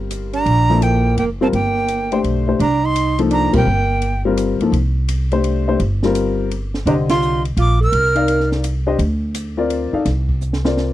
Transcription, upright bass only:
0.00 0.42 G1 medium
0.46 1.13 A#1 medium
1.17 1.50 F#1 medium
1.53 2.20 G1 medium
2.24 2.57 B1 medium
2.59 3.50 C2 medium
3.54 3.65 B1 medium
3.65 4.56 G1 medium
4.60 muted upright bass stroke soft
4.72 5.75 C2 medium
5.80 6.82 G1 medium
6.86 7.53 C2 medium
7.57 7.90 A#1 medium
7.92 8.95 C2 medium
8.99 9.89 D2 medium
9.93 muted upright bass stroke soft
10.05 10.93 C2 medium

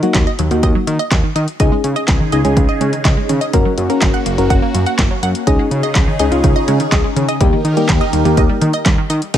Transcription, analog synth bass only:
0.15 0.26 D#2 medium
0.39 0.50 D#2 loud
0.51 0.62 D#2 medium
0.63 0.74 D#2 loud
0.87 0.98 D#3 loud
1.11 1.22 D#2 loud
1.36 1.47 D#3 loud
1.60 1.71 C#2 loud
1.84 1.95 C#3 loud
2.08 2.19 C#2 loud
2.33 2.44 C#2 loud
2.45 2.56 C#2 loud
2.57 2.68 C#2 loud
2.81 2.92 C#3 loud
3.05 3.16 C#2 loud
3.29 3.40 C#3 loud
3.53 3.64 F#1 loud
3.78 3.89 F#2 loud
4.02 4.13 F#1 loud
4.26 4.37 F#1 loud
4.38 4.49 F#1 loud
4.50 4.61 F#1 loud
4.74 4.85 F#2 loud
4.99 5.10 F#1 loud
5.23 5.34 F#2 loud
5.47 5.58 C#2 loud
5.71 5.82 C#3 loud
5.96 6.06 C#2 loud
6.20 6.31 C#2 loud
6.32 6.43 C#2 loud
6.44 6.55 C#2 loud
6.68 6.79 C#3 loud
6.92 7.03 C#2 loud
7.16 7.27 C#3 loud
7.41 7.52 D#2 loud
7.64 7.76 D#3 loud
7.89 8.00 D#2 loud
8.13 8.24 D#2 loud
8.25 8.36 D#2 loud
8.37 8.48 D#2 loud
8.61 8.72 D#3 loud
8.86 8.97 D#2 loud
9.10 9.21 D#3 loud
9.34 9.38 G#1 loud

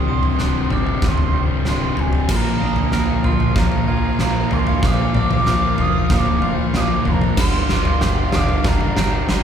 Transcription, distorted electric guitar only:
0.07 0.38 C2 medium
0.07 0.39 G2 medium
0.07 0.39 C3 medium
0.39 0.70 C2 medium
0.39 0.71 G2 medium
0.39 0.71 C3 medium
0.71 1.02 C2 medium
0.71 1.02 G2 medium
0.71 1.03 C3 medium
1.03 1.34 C2 medium
1.03 1.34 G2 medium
1.03 1.35 C3 medium
1.35 1.65 C2 medium
1.35 1.66 G2 medium
1.35 1.66 C3 medium
1.66 1.97 C2 medium
1.66 1.97 G2 medium
1.66 1.98 C3 medium
1.98 2.28 C2 medium
1.98 2.28 G2 medium
1.98 2.28 C3 medium
2.30 2.61 A#2 medium
2.30 2.62 F3 medium
2.30 2.62 A#3 loud
2.61 2.92 A#2 medium
2.61 2.93 F3 medium
2.61 2.93 A#3 medium
2.92 3.24 A#2 medium
2.92 3.25 F3 medium
2.92 3.25 A#3 medium
3.24 3.55 A#2 medium
3.24 3.56 F3 medium
3.24 3.57 A#3 medium
3.56 3.86 A#2 medium
3.56 3.87 F3 medium
3.56 3.88 A#3 medium
3.87 4.18 A#2 medium
3.87 4.20 F3 medium
3.87 4.20 A#3 medium
4.19 4.50 A#2 medium
4.19 4.52 F3 medium
4.19 4.52 A#3 medium
4.51 4.82 A#2 medium
4.51 4.83 F3 medium
4.51 4.84 A#3 medium
4.83 5.14 A#2 medium
4.83 5.15 F3 loud
4.83 5.16 A#3 loud
5.15 5.45 A#2 medium
5.15 5.46 F3 medium
5.15 5.47 A#3 medium
5.46 5.77 A#2 medium
5.46 5.78 F3 medium
5.46 5.79 A#3 medium
5.78 6.09 A#2 medium
5.78 6.10 F3 medium
5.78 6.11 A#3 medium
6.10 6.41 A#2 medium
6.10 6.42 F3 medium
6.10 6.42 A#3 medium
6.42 6.73 A#2 medium
6.42 6.74 F3 medium
6.42 6.75 A#3 medium
6.74 7.04 A#2 medium
6.74 7.06 F3 medium
6.74 7.06 A#3 loud
7.06 7.36 A#2 medium
7.06 7.38 F3 medium
7.06 7.38 A#3 medium
7.38 7.69 G2 medium
7.38 7.69 D3 medium
7.38 7.70 G3 medium
7.69 8.00 G2 medium
7.69 8.00 D3 medium
7.69 8.01 G3 medium
8.01 8.32 G2 medium
8.01 8.31 D3 medium
8.01 8.33 G3 medium
8.32 8.63 G2 medium
8.32 8.64 D3 medium
8.32 8.65 G3 medium
8.64 8.96 G2 medium
8.64 8.96 D3 medium
8.64 8.97 G3 medium
8.97 9.27 G2 medium
8.97 9.28 D3 medium
8.97 9.29 G3 medium
9.29 9.43 G2 medium
9.29 9.43 D3 medium
9.29 9.43 G3 loud

